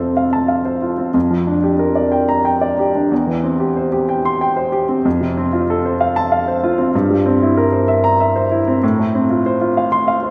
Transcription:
0.00 1.11 F2 medium
0.00 1.17 C3 soft
0.00 0.98 C4 soft
0.00 0.82 F4 soft
0.00 0.10 A4 soft
0.00 0.26 C5 soft
0.17 0.43 F5 soft
0.33 0.59 A5 medium
0.48 0.75 F5 soft
0.65 0.91 C5 soft
0.82 1.08 F4 soft
0.98 1.14 C4 soft
1.14 3.06 F2 soft
1.31 1.57 F3 soft
1.47 1.73 D4 soft
1.64 1.89 G4 soft
1.79 2.05 A#4 soft
1.96 2.22 D5 soft
2.12 2.38 G5 soft
2.29 2.55 A#5 medium
2.45 2.71 G5 soft
2.61 2.88 D5 soft
2.79 3.05 G4 soft
2.95 3.11 D4 soft
3.12 5.01 E2 medium
3.27 3.53 E3 soft
3.43 3.69 C4 soft
3.60 3.86 G4 soft
3.77 4.02 C5 soft
3.92 4.18 G4 soft
4.09 4.34 G5 medium
4.25 4.51 C6 medium
4.41 4.67 G5 medium
4.57 4.82 C5 soft
4.72 4.98 G4 soft
4.89 5.05 C4 soft
5.05 6.90 F2 medium
5.21 5.47 C3 soft
5.37 5.63 C4 medium
5.53 5.78 F4 soft
5.70 5.95 A4 medium
5.85 6.10 C5 soft
6.01 6.25 F5 medium
6.16 6.41 A5 medium
6.32 6.56 F5 medium
6.48 6.72 C5 medium
6.63 6.88 F4 medium
6.78 6.94 C4 soft
6.95 8.80 G2 medium
7.10 7.35 G3 soft
7.26 7.51 C4 medium
7.42 7.67 E4 medium
7.57 7.82 A#4 medium
7.72 7.98 C5 soft
7.88 8.13 E5 medium
8.04 8.29 A#5 medium
8.20 8.45 E5 medium
8.36 8.61 C5 medium
8.51 8.76 E4 medium
8.68 8.83 C4 soft
8.83 10.30 A2 medium
9.00 9.24 A3 soft
9.15 9.40 C4 soft
9.30 9.55 F4 soft
9.46 9.71 C5 medium
9.61 9.86 F4 soft
9.77 10.02 F5 medium
9.92 10.17 C6 medium
10.08 10.30 F5 medium
10.23 10.30 C5 soft

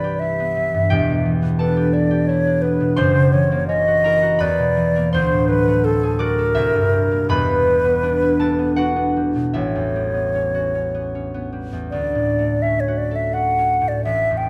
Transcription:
0.00 0.92 C2 medium
0.00 0.73 G2 soft
0.00 0.56 E3 soft
0.00 0.39 B3 soft
0.00 0.91 C4 soft
0.00 0.20 E4 soft
0.00 0.90 G4 soft
0.00 3.02 B4 medium
0.00 0.92 C5 medium
0.00 0.21 D5 medium
0.00 3.01 B5 medium
0.00 0.91 C6 loud
0.20 1.92 E4 medium
0.20 1.31 E5 medium
0.40 1.41 B3 soft
0.57 0.93 E3 soft
0.74 0.93 G2 soft
0.90 3.01 E1 medium
0.90 3.02 E2 medium
0.90 1.75 G4 medium
0.90 3.01 G5 loud
1.09 2.79 B2 medium
1.25 3.02 E3 soft
1.43 2.63 B3 medium
1.58 2.46 D4 medium
1.58 3.01 A4 medium
1.58 1.95 B4 medium
1.58 3.01 A5 medium
1.76 2.09 G4 medium
1.93 2.28 E4 medium
1.93 2.29 D5 medium
2.11 3.00 G4 medium
2.27 4.04 E4 medium
2.27 2.63 C#5 medium
2.47 3.01 D4 medium
2.62 3.01 B3 medium
2.62 2.99 B4 medium
2.80 3.01 B2 medium
2.96 4.43 F#1 medium
2.96 4.44 F#2 medium
2.96 3.34 C5 medium
2.96 4.44 C5 loud
2.96 4.43 C6 loud
3.15 4.44 C#3 medium
3.33 4.44 E3 medium
3.33 3.67 C#5 medium
3.52 4.95 A#3 medium
3.68 4.44 C#4 medium
3.68 4.42 D#5 loud
3.88 4.21 F#4 medium
4.04 5.16 E4 medium
4.04 5.16 A#4 medium
4.04 5.16 A#5 loud
4.22 4.43 F#4 medium
4.39 5.16 E2 medium
4.39 5.16 B4 medium
4.39 5.12 D5 medium
4.39 5.15 B5 loud
4.59 5.16 B2 medium
4.77 5.16 E3 medium
4.96 5.17 A#3 medium
5.13 6.59 D2 medium
5.13 5.50 C5 medium
5.13 7.35 C5 loud
5.13 7.34 C6 loud
5.33 6.60 A2 medium
5.48 7.34 F#3 medium
5.48 5.86 B4 medium
5.68 6.59 A3 medium
5.85 7.35 C4 medium
5.85 6.21 A4 medium
6.03 6.59 G#4 medium
6.19 7.34 F#4 medium
6.19 7.30 A#4 medium
6.19 6.59 D5 medium
6.19 6.58 D6 loud
6.39 6.59 A4 medium
6.55 7.34 C2 medium
6.55 8.21 E4 medium
6.55 9.52 E5 loud
6.75 7.34 G2 medium
6.93 7.65 G3 medium
7.11 7.34 A#3 medium
7.29 9.58 E1 medium
7.29 9.58 E2 medium
7.29 9.21 B4 loud
7.29 11.20 B4 loud
7.29 11.20 B5 loud
7.49 9.35 B2 medium
7.67 9.15 G3 medium
7.85 8.58 B3 medium
8.03 8.40 D4 medium
8.22 9.54 E4 medium
8.40 8.76 D4 soft
8.40 12.31 A4 medium
8.40 12.30 A5 loud
8.59 8.95 B3 medium
8.76 9.59 D4 medium
8.76 10.53 F#4 medium
8.76 10.10 F#5 loud
8.96 10.13 B3 soft
9.16 9.95 G3 soft
9.36 9.59 B2 soft
9.54 11.93 A1 medium
9.54 11.93 E4 medium
9.54 11.49 C#5 medium
9.54 11.93 E5 medium
9.75 11.71 E2 soft
9.96 11.51 G3 soft
10.14 10.93 B3 soft
10.35 10.74 C#4 soft
10.54 12.87 F#4 medium
10.75 11.14 C#4 soft
10.95 11.33 B3 soft
11.15 12.62 C#4 soft
11.34 11.94 B3 soft
11.52 11.93 G3 soft
11.72 11.94 E2 soft
11.91 14.09 D2 medium
11.91 12.64 D5 medium
12.15 13.80 A2 soft
12.39 14.49 A3 soft
12.62 13.57 C#4 soft
12.62 12.82 E5 medium
12.80 12.99 C#5 medium
12.88 13.32 F#4 soft
12.98 13.17 D5 medium
13.11 14.49 A4 soft
13.16 13.35 E5 medium
13.34 14.08 F#4 soft
13.34 13.90 F#5 medium
13.58 14.49 C#4 soft
13.81 14.08 A2 soft
13.88 14.04 D5 medium
14.04 14.49 A1 medium
14.04 14.39 E5 medium
14.30 14.49 E2 soft
14.37 14.49 G5 medium

